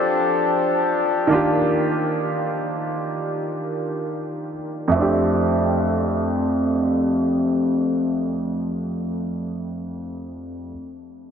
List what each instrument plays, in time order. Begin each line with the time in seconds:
Already playing: grand piano F3 C4 D4 G4 A4, harmonium F3 D4 G4 A4
1.27 grand piano D#3 A#3 D4, harmonium D#3
1.32 grand piano F4 G4
4.88 grand piano F2 A3
4.95 grand piano C4 D4
5.02 grand piano G4